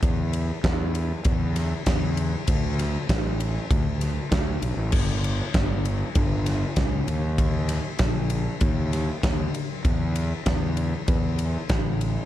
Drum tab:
CC |--------|--------|x-------|--------|
RD |xxxxxxxx|xxxxxxxx|-xxxxxxx|xxxxxxxx|
SD |--o--oo-|-oo--oo-|--o--oo-|-oo--oo-|
BD |o-o-o-o-|o-o-o-o-|o-o-o-o-|o-o-o-o-|

CC |--------|
RD |xxxxxxxx|
SD |--o---o-|
BD |o-o-o-o-|